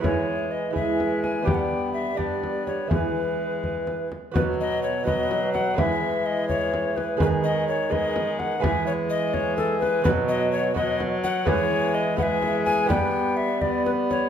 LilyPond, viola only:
\new Staff \with { instrumentName = "Viola" } { \clef bass \time 6/8 \key e \major \tempo 4. = 84 gis4. gis4. | b4. b4. | gis2~ gis8 r8 | fis4. fis4. |
gis2. | gis4. gis4. | gis2. | fis4. fis4. |
gis4. gis4. | b4. b4. | }